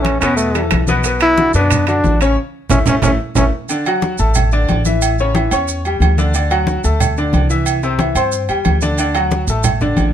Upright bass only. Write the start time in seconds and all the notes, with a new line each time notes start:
Already playing: A1
0.22 E2
0.72 B1
1.54 F#2
2.04 A1
2.70 A1
2.87 A1
3.03 A1
3.37 A1
4.19 A1
4.70 A1
5.52 E2
6.00 D2
6.84 D2
7.33 C2
8.15 G2
8.49 E2
8.66 D2
9.47 A1
9.97 A1